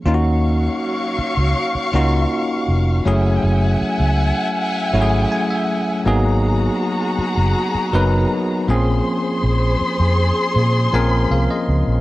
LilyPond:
<<
  \new Staff \with { instrumentName = "String section" } { \time 4/4 \key ees \minor \tempo 4 = 80 <ges f'' des'''>1 | <fes'' ges'' aes''>1 | <ges' aes' bes''>2.~ <ges' aes' bes''>8 <aes' c'' c'''>8~ | <aes' c'' c'''>1 | }
  \new Staff \with { instrumentName = "Tine electric piano" } { \time 4/4 \key ees \minor << { r1 | r2. aes''16 fes''8. | r1 | r2 r8 aes''8 f''16 ees''8. | } \\ { <bes des' ees' f' ges'>2 r8 <bes des' ees' f' ges'>4. | <ges a des' fes' aes'>2 r8 <ges a des' fes' ges' aes'>4. | <ges bes ces' ees' aes'>2 r8 <ges ces' ees' bes' ces''>4 <f bes c' des' aes'>8~ | <f bes c' des' aes'>4. r4 <f bes c' des' bes'>4. | } >> }
  \new Staff \with { instrumentName = "Fingered electric bass" } { \clef bass \time 4/4 \key ees \minor ees,4 r8. des,16 r8 des,8 r8 f,,8 | ges,,8 ges,,8 r16 des,8 r8. aes,,8 r4 | aes,,4 r8. ges,,16 r8 ges,,8 r8 bes,,8 | r8 bes,,8 r16 f,8 r16 bes,8 bes,,8 c,16 r16 des,16 bes,,16 | }
>>